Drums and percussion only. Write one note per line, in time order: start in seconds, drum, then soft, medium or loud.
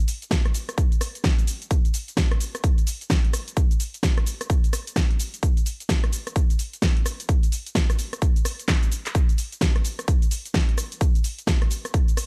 0.08 open hi-hat loud
0.08 cabasa medium
0.22 closed hi-hat soft
0.22 cabasa soft
0.31 kick loud
0.31 snare loud
0.31 closed hi-hat medium
0.31 cabasa soft
0.46 cross-stick medium
0.46 closed hi-hat soft
0.54 open hi-hat medium
0.54 cabasa medium
0.69 cross-stick medium
0.69 closed hi-hat medium
0.69 cabasa soft
0.78 kick loud
0.78 closed hi-hat medium
0.78 cabasa soft
0.92 closed hi-hat soft
0.92 cabasa soft
1.01 cross-stick medium
1.01 open hi-hat loud
1.01 cabasa medium
1.15 closed hi-hat medium
1.15 cabasa soft
1.24 kick loud
1.24 snare loud
1.24 closed hi-hat medium
1.24 cabasa soft
1.39 closed hi-hat soft
1.39 cabasa soft
1.47 open hi-hat loud
1.47 cabasa medium
1.62 closed hi-hat soft
1.62 cabasa soft
1.71 kick loud
1.71 closed hi-hat medium
1.71 cabasa soft
1.85 closed hi-hat soft
1.85 cabasa soft
1.94 open hi-hat loud
1.94 cabasa medium
2.08 closed hi-hat soft
2.08 cabasa soft
2.17 kick loud
2.17 snare loud
2.17 closed hi-hat medium
2.17 cabasa soft
2.31 cross-stick medium
2.31 closed hi-hat soft
2.40 open hi-hat medium
2.40 cabasa medium
2.55 cross-stick medium
2.55 closed hi-hat medium
2.55 cabasa soft
2.64 kick loud
2.64 closed hi-hat medium
2.64 cabasa soft
2.78 closed hi-hat soft
2.78 cabasa soft
2.87 open hi-hat loud
2.87 cabasa medium
3.01 closed hi-hat soft
3.01 cabasa soft
3.10 kick loud
3.10 snare loud
3.10 closed hi-hat medium
3.10 cabasa soft
3.25 closed hi-hat soft
3.33 cross-stick medium
3.33 open hi-hat medium
3.33 cabasa medium
3.48 closed hi-hat soft
3.48 cabasa soft
3.57 kick loud
3.57 closed hi-hat medium
3.57 cabasa soft
3.71 closed hi-hat soft
3.71 cabasa soft
3.80 open hi-hat medium
3.80 cabasa medium
3.94 closed hi-hat soft
3.94 cabasa soft
4.03 kick loud
4.03 snare loud
4.03 closed hi-hat medium
4.03 cabasa soft
4.18 cross-stick medium
4.18 closed hi-hat soft
4.26 open hi-hat medium
4.26 cabasa medium
4.41 cross-stick medium
4.41 closed hi-hat medium
4.41 cabasa soft
4.50 kick loud
4.50 closed hi-hat medium
4.50 cabasa soft
4.64 closed hi-hat soft
4.64 cabasa soft
4.73 cross-stick medium
4.73 open hi-hat loud
4.73 cabasa medium
4.87 closed hi-hat medium
4.87 cabasa soft
4.96 kick loud
4.96 snare loud
4.96 closed hi-hat medium
4.96 cabasa soft
5.11 closed hi-hat soft
5.20 open hi-hat medium
5.20 cabasa medium
5.34 closed hi-hat medium
5.34 cabasa soft
5.43 kick loud
5.43 closed hi-hat medium
5.43 cabasa soft
5.57 closed hi-hat soft
5.57 cabasa soft
5.66 open hi-hat loud
5.66 cabasa medium
5.80 closed hi-hat medium
5.80 cabasa soft
5.89 kick loud
5.89 snare loud
5.89 closed hi-hat medium
5.89 cabasa medium
6.04 cross-stick medium
6.04 closed hi-hat soft
6.13 open hi-hat medium
6.13 cabasa medium
6.27 cross-stick medium
6.27 closed hi-hat medium
6.27 cabasa soft
6.36 kick loud
6.36 closed hi-hat medium
6.36 cabasa soft
6.50 closed hi-hat soft
6.50 cabasa soft
6.59 open hi-hat loud
6.59 cabasa medium
6.73 closed hi-hat medium
6.73 cabasa soft
6.82 kick loud
6.82 snare loud
6.82 closed hi-hat medium
6.82 cabasa soft
6.97 closed hi-hat soft
7.06 cross-stick medium
7.06 open hi-hat medium
7.06 cabasa medium
7.20 closed hi-hat medium
7.20 cabasa soft
7.29 kick loud
7.29 closed hi-hat medium
7.29 cabasa soft
7.43 closed hi-hat soft
7.43 cabasa soft
7.52 open hi-hat loud
7.52 cabasa medium
7.66 closed hi-hat medium
7.66 cabasa soft
7.75 kick loud
7.75 snare loud
7.75 closed hi-hat medium
7.75 cabasa soft
7.90 cross-stick medium
7.90 closed hi-hat soft
7.90 cabasa soft
7.99 open hi-hat medium
7.99 cabasa medium
8.13 cross-stick medium
8.13 closed hi-hat medium
8.13 cabasa soft
8.22 kick loud
8.22 closed hi-hat medium
8.22 cabasa soft
8.36 closed hi-hat soft
8.36 cabasa soft
8.45 cross-stick medium
8.45 open hi-hat loud
8.45 cabasa medium
8.59 closed hi-hat medium
8.59 cabasa soft
8.68 kick loud
8.68 snare loud
8.68 clap loud
8.68 closed hi-hat medium
8.68 cabasa soft
8.83 closed hi-hat soft
8.83 cabasa soft
8.92 open hi-hat medium
8.92 cabasa medium
9.06 clap medium
9.06 closed hi-hat medium
9.06 cabasa soft
9.15 kick loud
9.15 closed hi-hat medium
9.15 cabasa soft
9.29 closed hi-hat soft
9.29 cabasa soft
9.38 open hi-hat loud
9.38 cabasa medium
9.52 closed hi-hat medium
9.52 cabasa soft
9.61 kick loud
9.61 snare loud
9.61 closed hi-hat medium
9.61 cabasa soft
9.76 cross-stick medium
9.76 closed hi-hat soft
9.85 open hi-hat medium
9.85 cabasa medium
9.99 cross-stick medium
9.99 closed hi-hat medium
9.99 cabasa soft
10.08 kick loud
10.08 closed hi-hat medium
10.08 cabasa soft
10.22 closed hi-hat soft
10.22 cabasa soft
10.31 open hi-hat loud
10.31 cabasa medium
10.46 closed hi-hat medium
10.46 cabasa soft
10.54 kick loud
10.54 snare loud
10.54 closed hi-hat medium
10.54 cabasa soft
10.69 closed hi-hat soft
10.78 cross-stick medium
10.78 open hi-hat medium
10.78 cabasa medium
10.92 closed hi-hat medium
10.92 cabasa soft
11.01 kick loud
11.01 closed hi-hat medium
11.01 cabasa soft
11.15 closed hi-hat soft
11.15 cabasa soft
11.24 open hi-hat loud
11.24 cabasa medium
11.39 closed hi-hat medium
11.39 cabasa soft
11.47 kick loud
11.47 snare loud
11.47 closed hi-hat medium
11.47 cabasa soft
11.62 cross-stick medium
11.62 closed hi-hat soft
11.71 open hi-hat medium
11.71 cabasa medium
11.85 cross-stick medium
11.85 closed hi-hat medium
11.85 cabasa soft
11.94 kick loud
11.94 closed hi-hat medium
11.94 cabasa soft
12.08 closed hi-hat soft
12.08 cabasa soft
12.17 cross-stick medium
12.17 open hi-hat loud
12.17 cabasa medium